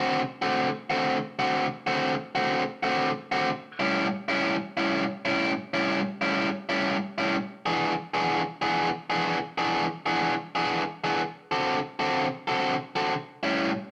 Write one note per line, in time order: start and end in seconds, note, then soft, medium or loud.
0.00 0.21 D3 medium
0.00 0.21 A3 medium
0.00 0.21 C4 medium
0.00 0.20 F#4 loud
0.42 0.69 D3 medium
0.42 0.69 A3 medium
0.42 0.69 C4 medium
0.42 0.68 F#4 medium
0.90 1.17 D3 medium
0.90 1.17 A3 medium
0.90 1.17 C4 medium
0.90 1.17 F#4 medium
1.39 1.66 D3 medium
1.39 1.65 A3 medium
1.39 1.65 C4 medium
1.39 1.65 F#4 medium
1.87 2.14 D3 medium
1.87 2.14 A3 medium
1.87 2.14 C4 medium
1.87 2.13 F#4 medium
2.35 2.62 D3 medium
2.35 2.62 A3 medium
2.35 2.62 C4 medium
2.35 2.62 F#4 medium
2.83 3.10 D3 medium
2.83 3.10 A3 medium
2.83 3.10 C4 medium
2.83 3.10 F#4 medium
3.32 3.49 D3 medium
3.32 3.49 A3 medium
3.32 3.49 C4 medium
3.32 3.49 F#4 medium
3.79 4.07 A2 medium
3.79 4.07 G3 medium
3.79 4.06 C#4 medium
3.79 4.06 E4 medium
4.28 4.55 A2 medium
4.28 4.55 G3 medium
4.28 4.55 C#4 medium
4.28 4.55 E4 medium
4.77 5.04 A2 medium
4.77 5.04 G3 medium
4.77 5.03 C#4 medium
4.77 5.03 E4 medium
5.25 5.52 A2 medium
5.25 5.52 G3 medium
5.25 5.51 C#4 medium
5.25 5.51 E4 medium
5.74 6.00 A2 medium
5.74 6.00 G3 medium
5.74 6.00 C#4 medium
5.74 6.00 E4 loud
6.21 6.48 A2 medium
6.21 6.48 G3 medium
6.21 6.48 C#4 medium
6.21 6.48 E4 medium
6.69 6.96 A2 medium
6.69 6.96 G3 medium
6.69 6.96 C#4 medium
6.69 6.96 E4 medium
7.18 7.35 A2 medium
7.18 7.35 G3 medium
7.18 7.35 C#4 medium
7.18 7.35 E4 medium
7.66 7.93 E3 medium
7.66 7.93 B3 medium
7.66 7.93 D4 medium
7.66 7.92 G#4 medium
8.14 8.41 E3 medium
8.14 8.41 B3 medium
8.14 8.41 D4 medium
8.14 8.40 G#4 medium
8.62 8.89 E3 medium
8.62 8.89 B3 medium
8.62 8.88 D4 medium
8.62 8.88 G#4 medium
9.10 9.37 E3 medium
9.10 9.37 B3 medium
9.10 9.37 D4 medium
9.10 9.37 G#4 medium
9.58 9.85 E3 medium
9.58 9.85 B3 medium
9.58 9.85 D4 medium
9.58 9.85 G#4 medium
10.06 10.33 E3 medium
10.06 10.33 B3 medium
10.06 10.33 D4 medium
10.06 10.33 G#4 medium
10.55 10.82 E3 medium
10.55 10.82 B3 medium
10.55 10.82 D4 medium
10.55 10.81 G#4 medium
11.04 11.21 E3 medium
11.04 11.21 B3 medium
11.04 11.20 D4 medium
11.04 11.20 G#4 medium
11.51 11.78 D3 medium
11.51 11.78 C4 medium
11.51 11.78 F#4 medium
11.51 11.78 A4 loud
11.99 12.26 D3 medium
11.99 12.26 C4 medium
11.99 12.26 F#4 medium
11.99 12.26 A4 medium
12.48 12.74 D3 medium
12.48 12.74 C4 medium
12.48 12.74 F#4 medium
12.48 12.74 A4 loud
12.96 13.13 D3 medium
12.96 13.13 C4 medium
12.96 13.12 F#4 medium
12.96 13.12 A4 medium
13.43 13.70 A2 medium
13.43 13.70 G3 medium
13.43 13.70 C#4 loud
13.43 13.70 E4 medium